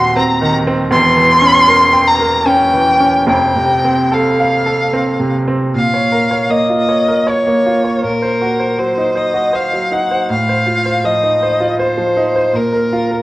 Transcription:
Already playing: D#1 D#2 D#3 C4 F#4 F#5 C6
0.17 C4 A#5
0.41 D#3
0.67 C4
0.91 E1 E2 C6
1.16 E3
1.42 C#4
1.67 A#4
1.93 G5
2.08 A#5
2.20 A#4
2.46 C#4 G5
2.73 E3
3.00 C#4
3.27 F1 F2 G5
3.56 C3
3.85 C4
4.12 A4 F5
4.40 F5
4.66 A4
4.93 C4
5.20 C3
5.48 C4
5.74 A#2 F5
5.94 C#5
6.12 A#4
6.31 C#5
6.50 A#3 D#5
6.70 F4
6.89 C#5
7.08 A#4
7.27 C#5
7.47 A#3
7.66 F4
7.84 C#5
8.03 A#2 A#4
8.22 C5
8.42 F#4
8.59 C5
8.78 F#3 C5
8.98 D#4
9.15 C5 D#5
9.34 F#4
9.53 C5 F5
9.73 F#3
9.92 D#4 F#5
10.11 C5
10.29 A2 F5
10.49 C5
10.67 F4
10.86 C5
11.04 F3 D#5
11.23 D#4
11.43 C5
11.60 F4
11.79 C5
11.97 F3
12.17 D#4
12.36 C5
12.54 A#2 A#4
12.73 A#4
12.93 F4
13.11 A#4

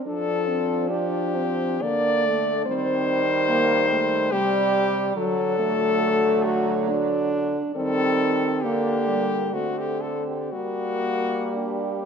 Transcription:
0.06 F3 D4 A4
0.48 C4
0.90 D4 G4
1.35 C4
1.81 D3 A#3 D4 D5
2.26 A3
2.66 D#3 G3 C4 C5
3.48 A#3
3.90 A3
4.31 C3 G3 G4
5.16 D3 F#3 A4
5.59 A3
6.45 F#4
6.89 D4
7.76 D#3 G3 C4 A4
8.62 D3 A#3 G4
9.08 G3
9.53 D3 A3 C4 F#4
9.79 G4
10.01 A4
10.27 G4
10.52 G3 A#3 F#4
11.53 D4 G4
12.02 C4

